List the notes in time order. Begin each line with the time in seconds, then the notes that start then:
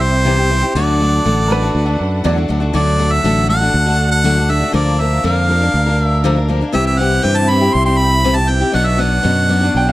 Already playing: C2 C4 E4 G4 E5
0.01 C5
0.25 C3 E3 C4 E4 G4
0.38 C4 E4 G4
0.50 E3 C4 E4 G4
0.63 C4 E4 G4
0.75 D2 D3 F#3 A3 D4 F#4 A4 D5 F#5
1.00 F#3 A3 D4 F#4
1.25 A1 D3 F#3 A3 D4 F#4
1.48 F#3 A3 D4 F#4 A#4
1.52 B4
1.62 A3 D4 F#4
1.75 D2
1.86 A3 D4 F#4
2.00 F#2
2.24 E2 D3 F#3 A3 D4 F#4 D5
2.36 A3 D4 F#4
2.48 D2 F#3 A3 D4 F#4
2.60 A3 D4 F#4
2.73 D2 D3 F#3 A3 D4 F#4 A4 D5 F#5
2.99 F#3 A3 D4 F#4
3.12 E5
3.24 A1 D3 F#3 A3 D4 F#4
3.48 F#3 A3 D4 F#4 F#5
3.61 A3 D4 F#4
3.74 D2
3.86 A3 D4 F#4
4.11 F#5
4.24 D3 F#3 A3 D4 F#4
4.37 A3 D4 F#4
4.48 F#3 A3 D4 F#4 E5
4.60 A3 D4 F#4
4.72 D2 D3 F3 A#3 D4 A#4 D5 F5
4.99 F3 A#3 D4 A#4 E5
5.23 F2 D3 F3 A#3 D4 A#4 F5
5.49 F3 A#3 D4 A#4
5.61 A#3 D4 A#4
5.74 D2
5.86 A#3 D4 A#4
6.05 E5
6.24 D3 F3 A#3 D4 A#4
6.36 A#3 D4 A#4
6.48 F3 A#3 D4 A#4
6.61 A#3 D4 A#4
6.72 C2 C3 E3 C4 E4 G4 E5
6.86 E5
6.98 E3 C4 E4 G4 F#5
7.22 G2 C3 E3 C4 E4 G4 G5
7.37 A5
7.49 E3 C4 E4 G4 B5
7.61 C4 E4 G4
7.73 C2 C6
7.85 C4 E4 G4 C6
7.97 B5
8.24 C3 E3 C4 E4 G4
8.36 C4 E4 G4 A5
8.48 E3 C4 E4 G4 G5
8.61 C4 E4 G4
8.72 B1 B2 F#3 B3 D4 F#4 D5 F#5
8.86 E5
8.97 F#3 B3 D4 F#4 F#5
9.23 F#2 B2 F#3 B3 D4 F#4
9.48 F#3 B3 D4 F#4
9.61 B3 D4 F#4
9.75 B1 G5
9.87 B3 D4 F#4 F5